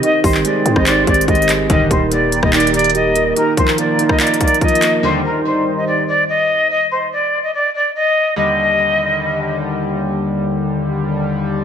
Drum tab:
HH |x-----------o-----------x-----------x-----------x-----------x---x---x---x---x---x---x-----------|x-----------x-----------x-----------x-----------x---x---x---x--x--x--x--x-----------x-----------|x-----------x-----------x-----------x-----------x---x---x---x---x---x---x---x---x---x-----------|------------------------------------------------------------------------------------------------|
CP |------------------x-----------------------------x-----------------------------------x-----------|------------------------------------------------x-----------------------------------------------|------------------x-----------------------------x-----------------------------------x-----------|------------------------------------------------------------------------------------------------|
SD |------------------------------------------r-----------------------------------------------------|------------------------------------------r-----------------------------------------------------|------------------------------------------r-----------------------------------------------------|------------------------------------------------------------------------------------------------|
BD |------------o-----------------------------o-----------------o-----------o-----------------------|o-----------o-----------------------------o-----------------------------------------------------|------------o-----------------------------o-----------------o-----------o-----------------------|------------------------------------------------------------------------------------------------|

HH |------------------------------------------------------------------------------------------------|------------------------------------------------------------------------------------------------|------------------------------------------------------------------------------------------------|
CP |------------------------------------------------------------------------------------------------|------------------------------------------------------------------------------------------------|------------------------------------------------------------------------------------------------|
SD |------------------------------------------------------------------------------------------------|------------------------------------------------------------------------------------------------|------------------------------------------------------------------------------------------------|
BD |------------------------------------------------------------------------------------------------|------------------------------------------------------------------------------------------------|------------------------------------------------------------------------------------------------|